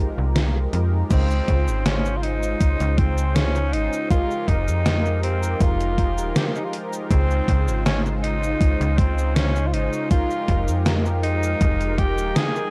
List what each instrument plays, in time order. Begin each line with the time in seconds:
Already playing: ambient pad F3 G#3 D#4 G4 A#4 C5, analog polysynth G#3 D#4
0.00 analog polysynth F4 G4 A#4
0.18 fm bass C2
0.36 snare, closed hi-hat
0.73 fm bass F2, analog polysynth G#3 D#4 F4 G4 A#4, closed hi-hat
1.09 fm bass C#2, analog polysynth C#3 G#3 D#4 F4 C5, ambient pad C#3 G#3 D#4 F4 C5, tenor saxophone C4, kick, closed hi-hat, crash, cabasa
1.31 cabasa
1.48 fm bass C#2, kick, closed hi-hat
1.68 fm bass G#1, cabasa
1.86 tenor saxophone C#4, snare, closed hi-hat, cabasa
2.05 cabasa
2.16 tenor saxophone F4
2.23 tenor saxophone D#4, closed hi-hat
2.43 cabasa
2.61 fm bass C#2, kick, closed hi-hat, cabasa
2.80 fm bass C#2, closed hi-hat, cabasa
2.98 tenor saxophone C4, kick, closed hi-hat
3.18 cabasa
3.36 tenor saxophone C#4, snare, closed hi-hat, cabasa
3.55 cabasa
3.72 fm bass G#1, analog polysynth G#3 C#4 D#4 F4 C5, tenor saxophone D#4, closed hi-hat
3.93 cabasa
4.09 ambient pad F3 G#3 G4 A#4, analog polysynth G#3 D#4 F4 G4 A#4, tenor saxophone F4, kick, closed hi-hat, cabasa
4.31 cabasa
4.48 fm bass F1, tenor saxophone D#4, kick, closed hi-hat
4.68 fm bass F2, cabasa
4.86 snare, closed hi-hat, cabasa
5.06 cabasa
5.23 tenor saxophone C4, closed hi-hat
5.43 cabasa
5.61 fm bass F1, tenor saxophone F4, kick, closed hi-hat, cabasa
5.81 closed hi-hat, cabasa
5.98 kick, closed hi-hat
6.18 fm bass D#1, cabasa
6.35 analog polysynth G#3 D#4 F4 G4 A#4, tenor saxophone G4, snare, closed hi-hat, cabasa
6.46 tenor saxophone F4
6.55 tenor saxophone D#4, cabasa
6.64 tenor saxophone F4
6.73 closed hi-hat
6.93 cabasa
7.09 fm bass C#2, analog polysynth C#3 G#3 D#4 F4 C5, ambient pad C#3 G#3 F4, tenor saxophone C4, kick, closed hi-hat, cabasa
7.31 cabasa
7.48 fm bass C#2, kick, closed hi-hat
7.68 fm bass G#1, cabasa
7.86 tenor saxophone C#4, snare, closed hi-hat, cabasa
8.06 cabasa
8.23 tenor saxophone D#4, closed hi-hat
8.43 cabasa
8.61 fm bass C#2, kick, closed hi-hat, cabasa
8.81 fm bass C#2, closed hi-hat, cabasa
8.98 tenor saxophone C4, kick, closed hi-hat
9.18 cabasa
9.35 tenor saxophone C#4, snare, closed hi-hat, cabasa
9.56 cabasa
9.67 tenor saxophone F4
9.73 fm bass G#1, analog polysynth G#3 C#4 D#4 F4 C5, tenor saxophone D#4, closed hi-hat
9.93 cabasa
10.09 ambient pad F3 G#3 A#4 G5, analog polysynth G#3 D#4 F4 G4 A#4, tenor saxophone F4, kick, closed hi-hat, cabasa
10.31 cabasa
10.48 fm bass F1, kick, closed hi-hat
10.68 fm bass F2, cabasa
10.86 snare, closed hi-hat, cabasa
11.06 cabasa
11.23 tenor saxophone D#4, closed hi-hat
11.43 cabasa
11.61 fm bass F1, kick, closed hi-hat, cabasa
11.81 closed hi-hat, cabasa
11.98 tenor saxophone G4, kick, closed hi-hat
12.18 fm bass D#1, cabasa
12.35 analog polysynth G#3 D#4 F4 A#4 G5, tenor saxophone G#4, snare, closed hi-hat, cabasa
12.56 cabasa